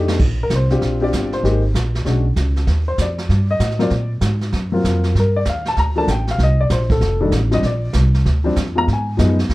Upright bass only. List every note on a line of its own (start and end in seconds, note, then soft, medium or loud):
0.00 0.16 F2 medium
0.20 0.49 A#1 medium
0.50 0.80 C2 medium
0.81 1.11 A#1 medium
1.13 1.43 G1 medium
1.43 1.73 G#1 medium
1.74 2.04 A#1 medium
2.05 2.35 B1 medium
2.36 2.66 C#2 medium
2.67 2.97 D#2 medium
2.98 3.28 F2 medium
3.29 3.59 G2 medium
3.60 3.90 A2 medium
3.91 4.21 A#2 medium
4.21 4.52 G#2 medium
4.53 4.83 F#2 medium
4.84 5.14 F2 medium
5.15 5.45 G2 medium
5.46 5.76 D#2 medium
5.77 6.07 D2 medium
6.07 6.38 A1 medium
6.38 6.69 C2 medium
6.70 7.00 A#1 medium
7.01 7.31 F1 medium
7.31 7.62 A1 medium
7.63 7.93 A#1 medium
7.94 8.24 C2 medium
8.26 8.55 D2 medium
8.56 8.86 F2 medium
8.87 9.17 G#2 medium
9.19 9.48 F#2 medium
9.49 9.54 F2 medium